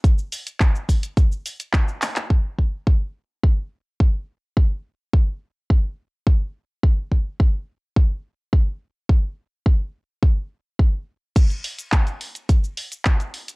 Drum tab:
CC |----------------|----------------|----------------|----------------|
HH |x-oxx-oxx-oxx-ox|----------------|----------------|----------------|
SH |xxxxxxxxxxxxxxxx|----------------|----------------|----------------|
CP |----x-------x-xx|----------------|----------------|----------------|
BD |o---o-o-o---o---|o-o-o---o---o---|o---o---o---o---|o-o-o---o---o---|

CC |----------------|x---------------|
HH |----------------|xxoxxxoxx-oxxxox|
SH |----------------|xx-xxx-xxx-xxx-x|
CP |----------------|----x-------x---|
BD |o---o---o---o---|o---o---o---o---|